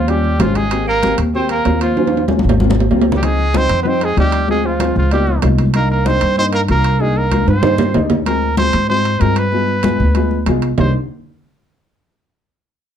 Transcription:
Already playing: upright bass D#2, trumpet F4
0.08 upright piano G3 C#4 F4, tenor saxophone G3, trumpet G4, high conga, high timbale
0.24 high conga
0.39 upright bass G#1, tenor saxophone F3, upright piano G3 C#4 F4, trumpet F4, high conga, high timbale, low timbale
0.55 tenor saxophone G#3, trumpet G#4, high conga, high timbale
0.70 upright piano A#3 C4 G4, high conga, high timbale
0.87 tenor saxophone A#3, trumpet A#4, high conga
1.02 upright piano A#3 C4 G4, high conga, high timbale
1.18 upright bass D#2, high conga, high timbale
1.33 upright piano A#3 C4 G4, tenor saxophone C4, trumpet C5, high conga
1.49 tenor saxophone A#3, trumpet A#4, high conga, high timbale
1.65 upright bass D#2, upright piano A#3 C4 F4, high conga, high timbale, low timbale
1.81 tenor saxophone F3, trumpet F4, high conga, high timbale
1.96 upright piano F#3 C#4 F4, high conga, high timbale
2.07 high timbale
2.13 high conga
2.17 high timbale
2.28 upright piano F#3 C#4 F4, high conga, low timbale
2.39 high conga
2.44 upright bass G#1
2.49 high conga, low timbale
2.59 upright piano F#3 A#3 C4 F4, high conga
2.70 high conga, low timbale
2.80 low timbale
2.91 upright bass C#2, upright piano F#3 A#3 C4 F4, low timbale
3.01 low timbale
3.12 tenor saxophone G3, low conga, low timbale
3.17 trumpet G4
3.22 upright piano F3 C4 D#4, tenor saxophone G#3, trumpet G#4, high conga, high timbale
3.39 high conga
3.54 upright piano F3 C4 D#4, tenor saxophone C4, trumpet C5, high conga, high timbale
3.69 upright bass F2, high conga, high timbale
3.82 upright piano F3 C4, tenor saxophone B3, trumpet B4, high conga
3.87 tenor saxophone C4, upright piano D#4, trumpet C5
4.01 tenor saxophone G#3, trumpet G#4, high conga, high timbale
4.17 upright bass D2, upright piano F3 C4 D#4, tenor saxophone G3, trumpet G4, high conga, high timbale
4.32 high conga, high timbale
4.48 upright piano G#3 C4 F4, tenor saxophone G#3, trumpet G#4, high conga
4.64 tenor saxophone F3, trumpet F4, high conga
4.79 upright piano G#3 C4 F4, high conga, high timbale
4.96 upright bass C#2, tenor saxophone F3, trumpet F4, high conga
5.11 tenor saxophone G3, upright piano A#3 B3 D#4 F4, trumpet G4, high conga, high timbale
5.27 high conga
5.42 upright bass C2, upright piano A#3 B3 D#4 F4, high conga, high timbale, low timbale
5.59 high conga, high timbale
5.74 upright piano A#3 D4 D#4, tenor saxophone A#3, trumpet A#4, high conga, high timbale
5.90 tenor saxophone A#3, trumpet A#4, high conga
6.05 upright piano A#3 D4 D#4, tenor saxophone C4, trumpet C5, high conga, high timbale
6.21 upright bass G2, high conga, high timbale
6.37 upright piano A#3 D4 D#4, tenor saxophone C4, trumpet C5, high conga
6.52 tenor saxophone A#3, trumpet A#4, high conga, high timbale
6.68 upright bass C2, upright piano A#3 D4 F4, tenor saxophone A#3, trumpet A#4, high conga, high timbale
6.84 high conga, high timbale
6.99 tenor saxophone G#3, upright piano A#3 D4 D#4, trumpet G#4, high conga
7.16 tenor saxophone A#3, trumpet A#4, high conga
7.31 upright piano A#3 D4 F4, high conga, high timbale
7.47 upright bass G2, tenor saxophone C4, trumpet C5, high timbale
7.62 upright piano A#3 D4 D#4, low conga, high timbale
7.78 low conga, low timbale
7.94 upright bass D2, upright piano A#3 D4 D#4, low conga, low timbale
8.10 low conga, low timbale
8.26 upright piano G#3 C4 F4, trumpet A#4, high conga, high timbale
8.42 high conga
8.57 upright piano G#3 C4 F4, trumpet C5, high conga, high timbale
8.73 upright bass G#2, high conga, high timbale
8.88 upright piano G#3 C4 F4, trumpet C5, high conga
9.05 high conga, high timbale
9.19 upright bass G2, upright piano G#3 C4 F4, trumpet A#4, high conga, high timbale
9.36 trumpet B4, high conga, high timbale
9.52 upright piano G#3 B3 F4, high conga
9.68 high conga
9.83 upright piano G#3 B3 F4, high conga, high timbale
10.00 upright bass D2, high conga
10.15 upright piano G#3 B3 F4, high conga, high timbale
10.31 high conga
10.46 upright bass C2, upright piano G#3 B3 F4, high conga, high timbale
10.62 high timbale
10.78 upright bass C2, upright piano A#3 D4 D#4, trumpet C5, low conga, low timbale

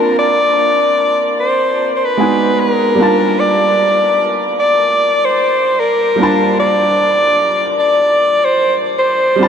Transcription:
Already playing: upright piano A#3 C4 D4 F4 A5, soprano saxophone A#4
0.19 soprano saxophone D5
1.40 soprano saxophone C5
1.96 soprano saxophone C5
2.05 soprano saxophone B4
2.17 upright piano G#3 B3 D#4 F#4 G#4
2.60 soprano saxophone A#4
2.95 upright piano G3 A#3 D4
3.01 upright piano F4 A5
3.40 soprano saxophone D5
4.60 soprano saxophone D5
5.25 soprano saxophone C5
5.80 soprano saxophone A#4
6.16 upright piano G3 A#3 D4
6.21 upright piano F4 A5
6.60 soprano saxophone D5
7.80 soprano saxophone D5
8.45 soprano saxophone C5
8.99 soprano saxophone C5
9.36 upright piano G3 C4 D4
9.41 upright piano F4 A5

